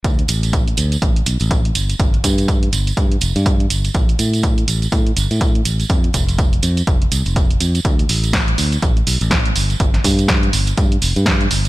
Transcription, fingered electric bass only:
X:1
M:4/4
L:1/16
Q:"Swing 16ths" 1/4=123
K:Ddor
V:1 name="Fingered electric bass" clef=bass
D,, z A,,,3 z D,, z A,,, z B,,, A,,,2 z G,,, z | G,,, z G,,3 z G,,, z G,, z F,,, G,,2 z G,,, z | A,,, z A,,3 z A,,, z A,, z G,,, A,,2 z A,,, z | F,, z F,,,3 z F,, z F,,, z C,, F,,,2 z F,, z |
D,, z A,,,3 z D,, z A,,, z B,,, A,,,2 z G,,, z | G,,, z G,,3 z G,,, z G,, z F,,, G,,2 z G,,, z |]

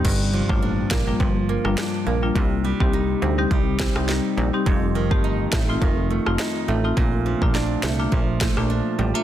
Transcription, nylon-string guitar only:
X:1
M:4/4
L:1/16
Q:"Swing 16ths" 1/4=104
K:Gm
V:1 name="Nylon-string guitar"
G,,2 F,2 D2 B,2 F,2 B,2 D2 B,2 | C,2 G,2 E2 C2 G,2 C2 E2 C2 | F,,2 E,2 E2 A,2 E,2 A,2 E2 A,2 | B,,2 F,2 D2 A,2 F,2 A,2 D2 G, A, |]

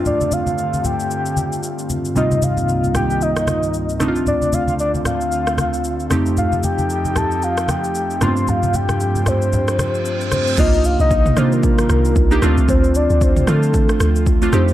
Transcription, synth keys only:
X:1
M:4/4
L:1/16
Q:"Swing 16ths" 1/4=114
K:Cdor
V:1 name="Synth keys"
[G,,A,CDF]12- [G,,A,CDF]2 z2 | [C,G,B,CEF]12- [C,G,B,CEF]2 [A,CDEF]2- | [A,CDEF]12- [A,CDEF]2 [F,,A,CEG]2- | [F,,A,CEG]12- [F,,A,CEG]2 [G,,A,=B,CDF]2- |
[G,,A,=B,CDF]12- [G,,A,B,CDF]2 z2 | [B,DEF]4- [B,DEF] z [B,DEF]6 z [B,DEG] [A,CDF]2- | [A,CDF]4 z2 [A,CDF]6 z [A,CDF] [A,CEG]2 |]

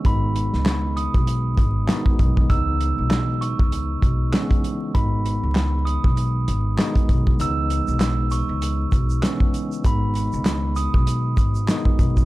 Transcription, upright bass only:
X:1
M:4/4
L:1/16
Q:"Swing 16ths" 1/4=98
K:G#m
V:1 name="Upright bass" clef=bass
G,,,3 C,,4 B,,,3 G,,,2 z2 B,,,2 | C,,3 B,,,4 C,,3 B,,,2 z4 | G,,,3 C,,4 B,,,3 G,,,2 z2 B,,,2 | C,,3 B,,,4 C,,3 B,,,2 z4 |
G,,,3 C,,4 B,,,3 G,,,2 z2 B,,,2 |]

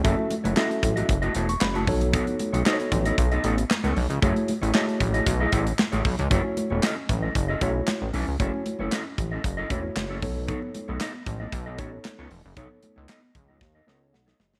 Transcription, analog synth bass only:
X:1
M:4/4
L:1/16
Q:1/4=115
K:Bmix
V:1 name="Analog synth bass" clef=bass
F,,, z2 F,,, z2 A,,,2 F,,,2 E,,,2 F,,,2 B,,,2- | B,,, z2 B,,, z2 A,,,2 B,,,2 A,,,2 z C,, B,,, C,, | F,,, z2 A,,, z2 A,,,2 B,,,2 A,,,2 z A,,, B,,, C,, | F,,, z2 E,,, z2 A,,,2 F,,,2 B,,,2 z A,,, B,,, C,, |
F,,, z2 F,,, z2 A,,,2 F,,,2 E,,,2 F,,,2 B,,,2- | B,,, z2 B,,, z2 A,,,2 B,,,2 A,,,2 z C,, E,,, F,,, | B,,, z2 C,, z2 C,,2 D,,2 C,,2 B,,,2 F,,,2 |]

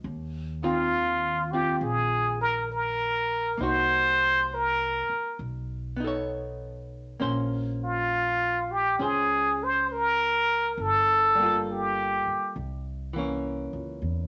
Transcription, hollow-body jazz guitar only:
X:1
M:4/4
L:1/8
Q:"Swing" 1/4=67
K:Bbdor
V:1 name="Hollow-body jazz guitar"
z [E,CF]2 [CF]4- [CF] | [B,E_G]4 z [=B,^D=A^c]3 | [B,Dc]4 [DAc]4 | z [G,B,F=A]3 z [=E,B,D]3 |]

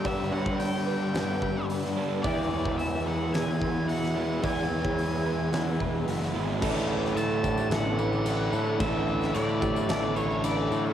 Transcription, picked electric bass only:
X:1
M:4/4
L:1/8
Q:1/4=110
K:Edor
V:1 name="Picked electric bass" clef=bass
G,, G,,3 G,,4 | E,, E,,3 E,,4 | E,, E,,3 E,, E,,, F,,, ^G,,, | A,,,2 A,,2 A,,,3 A,, |
A,,,2 A,,2 A,,,3 A,, |]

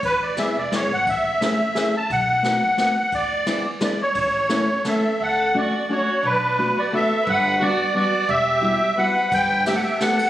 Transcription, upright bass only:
X:1
M:3/4
L:1/8
Q:"Swing" 1/4=175
K:A
V:1 name="Upright bass" clef=bass
E,,3 E,,, F,,, G,,, | A,,,4 z2 | B,,,4 z2 | E,,4 z2 |
A,,,4 z2 | [K:D] D,,4 z2 | B,,,4 z2 | G,,,4 z2 |
E,,,4 z2 | G,,,4 z2 |]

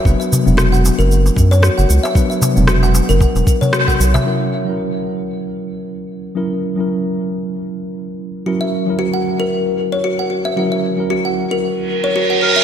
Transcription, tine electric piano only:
X:1
M:4/4
L:1/16
Q:"Swing 16ths" 1/4=114
K:none
V:1 name="Tine electric piano"
[^F,B,DB]3 [F,B,D]12- [F,B,D] | [^F,B,DB]3 [F,B,D]12- [F,B,D] | [^F,^CE^A]3 [F,CEA]12- [F,CEA] | [^F,^CE^A]3 [F,CEA]12- [F,CEA] |
[^F,^CE^A]3 [F,CEA]12- [F,CEA] | [^F,^CE^A]3 [F,CEA]12- [F,CEA] |]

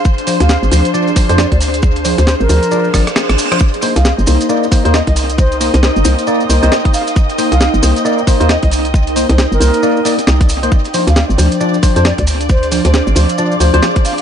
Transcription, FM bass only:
X:1
M:4/4
L:1/16
Q:"Swing 16ths" 1/4=135
K:Cm
V:1 name="FM bass" clef=bass
z3 D,,2 A,,, D,, z4 F,,2 D,,3- | D,,3 D,,2 A,,, D,, z3 A,,, z2 A,,, z2 | z3 C,,2 G,,, C,, z4 E,,2 C,,3- | C,,3 C,,2 G,,, C,, z3 C,, C,, z4 |
z3 C,,2 G,,, C,, z4 E,,2 C,,3- | C,,3 C,,2 G,,, C,, z4 z C,,4 | z3 D,,2 A,,, D,, z4 F,,2 D,,3- | D,,3 D,,2 A,,, D,, z3 D,, D,, z4 |]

